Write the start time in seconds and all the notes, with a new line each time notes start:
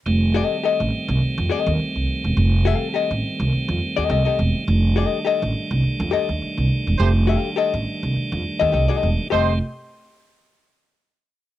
0.06 F1 D#3 G3 A3 C4
0.34 G4 A4 D#5
0.63 G4 A4 D#5
0.80 A1
1.08 C2
1.21 muted upright bass stroke
1.38 F2
1.50 G4 A4 D#5
1.67 D#2
1.79 muted upright bass stroke
1.96 C2
2.24 E1
2.37 F1
2.65 G4 A4 F5
2.94 G4 A4 D#5
3.11 A1
3.40 C2
3.52 muted upright bass stroke
3.69 F2
3.96 D#2 G4 A4 D#5
4.09 C2 G4 A4 D#5
4.25 G4 A4 D#5
4.39 E1
4.68 F1 D4
4.96 G4 A4 D#5
5.25 G4 A4 D#5
5.42 A1
5.71 C2
5.83 muted upright bass stroke
6.00 F2
6.11 G4 A4 D#5
6.29 D#2
6.42 muted upright bass stroke
6.58 C2
6.87 E1
6.99 F1 A3 G4 C5
7.27 G4 A4 F5
7.56 G4 A4 D#5
7.74 A1
8.03 C2
8.16 muted upright bass stroke
8.32 F2
8.60 D#2 G4 A4 D#5
8.72 C2 G4 A4 D#5
8.88 G4 A4 D#5
9.03 E1
9.30 F1 D#3 G3 A3 C4 G4 A4 C5 D#5